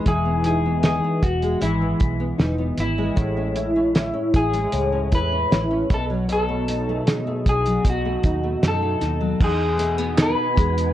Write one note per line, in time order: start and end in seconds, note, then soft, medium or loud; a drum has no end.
0.00 1.42 G#3 medium
0.00 0.24 B3 medium
0.00 0.43 D#4 medium
0.06 1.00 E1 medium
0.06 1.60 E3 medium
0.06 0.43 G#4 medium
0.06 kick medium
0.06 closed hi-hat medium
0.25 0.64 B3 medium
0.44 0.83 D#4 medium
0.44 0.82 G#4 medium
0.44 closed hi-hat medium
0.66 1.03 B3 medium
0.83 1.23 D#4 medium
0.83 1.25 G#4 medium
0.83 snare loud
0.83 closed hi-hat medium
1.04 1.80 B3 medium
1.23 1.54 E1 medium
1.23 1.62 F#4 medium
1.23 kick medium
1.23 closed hi-hat medium
1.42 2.98 G#3 medium
1.42 closed hi-hat medium
1.61 1.93 G#1 medium
1.61 5.11 E3 medium
1.61 2.36 E4 medium
1.61 closed hi-hat medium
1.82 2.19 B3 medium
2.00 2.32 B1 medium
2.00 kick medium
2.00 closed hi-hat medium
2.20 2.57 B3 medium
2.38 2.71 E1 medium
2.38 2.78 D#4 medium
2.38 snare loud
2.38 closed hi-hat medium
2.59 3.25 B3 medium
2.78 3.10 G#1 medium
2.78 4.40 E4 medium
2.78 snare soft
2.78 closed hi-hat medium
2.98 4.53 G#3 medium
3.16 4.11 A1 loud
3.16 4.71 A2 medium
3.16 kick loud
3.16 closed hi-hat medium
3.37 3.75 C#4 medium
3.56 3.94 E4 medium
3.56 closed hi-hat medium
3.76 4.13 C#4 medium
3.95 4.33 E4 medium
3.95 snare loud
3.95 closed hi-hat medium
4.14 4.91 C#4 medium
4.34 4.66 A1 medium
4.34 5.11 E4 medium
4.34 5.14 G#4 medium
4.34 kick medium
4.34 closed hi-hat medium
4.54 5.98 G#3 medium
4.54 closed hi-hat medium
4.73 5.13 C#2 medium
4.73 5.90 A2 medium
4.73 closed hi-hat medium
4.92 5.31 C#4 medium
5.12 5.44 E2 medium
5.12 5.50 E4 medium
5.12 5.88 B4 medium
5.12 kick medium
5.12 closed hi-hat medium
5.32 5.69 C#4 medium
5.51 5.83 A1 medium
5.51 5.98 E4 medium
5.51 snare loud
5.51 closed hi-hat medium
5.71 5.98 C#4 medium
5.90 7.00 B1 medium
5.90 6.27 B2 medium
5.90 kick loud
5.90 snare soft
5.90 closed hi-hat medium
5.94 6.04 A4 medium
6.10 7.65 F#3 medium
6.28 7.84 B2 medium
6.28 7.10 A4 medium
6.28 closed hi-hat medium
6.49 6.88 A3 medium
6.68 7.06 D#4 medium
6.68 closed hi-hat medium
6.89 7.26 A3 medium
7.07 7.46 D#4 medium
7.07 7.49 G#4 medium
7.07 snare loud
7.07 closed hi-hat medium
7.27 8.04 A3 medium
7.46 7.77 B1 medium
7.46 8.24 D#4 medium
7.46 7.84 G#4 medium
7.46 kick medium
7.46 closed hi-hat medium
7.66 9.19 F#3 medium
7.66 closed hi-hat medium
7.85 8.16 B1 medium
7.85 9.49 B2 medium
7.85 kick medium
7.85 closed hi-hat medium
7.89 9.00 F#4 medium
8.05 8.42 A3 medium
8.23 8.55 D#2 medium
8.23 8.62 D#4 medium
8.23 kick medium
8.23 closed hi-hat medium
8.43 8.81 A3 medium
8.62 8.94 F#2 medium
8.62 9.00 D#4 medium
8.62 snare loud
8.62 closed hi-hat medium
8.68 9.39 A4 medium
8.82 9.49 A3 medium
9.01 9.33 D#2 medium
9.01 9.40 D#4 medium
9.01 snare soft
9.01 closed hi-hat medium
9.21 9.48 F#3 medium
9.40 10.34 E2 medium
9.40 10.93 B2 medium
9.40 10.93 B3 medium
9.40 10.16 D#4 medium
9.40 10.93 D#4 medium
9.40 10.93 F#4 medium
9.40 10.93 G#5 medium
9.40 kick loud
9.40 crash medium
9.44 10.22 G#4 medium
9.78 9.98 A3 medium
9.78 closed hi-hat medium
9.98 10.93 B3 medium
10.17 10.93 D#4 medium
10.17 snare loud
10.17 clap medium
10.17 closed hi-hat medium
10.22 10.93 B4 medium
10.56 10.93 E2 medium
10.56 10.93 G#3 medium
10.56 kick loud
10.56 closed hi-hat medium
10.78 closed hi-hat medium